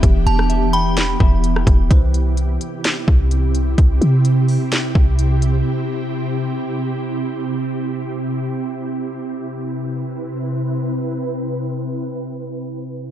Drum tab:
HH |x-x-x-x-x---x-x-|x-x-x-x-x---x-x-|x-x-x-o-x---x-x-|----------------|
SD |---r----o----r--|--------o-------|--------o-------|----------------|
BD |o---------o---o-|o---------o-----|o---------o-----|----------------|

HH |----------------|----------------|----------------|
SD |----------------|----------------|----------------|
BD |----------------|----------------|----------------|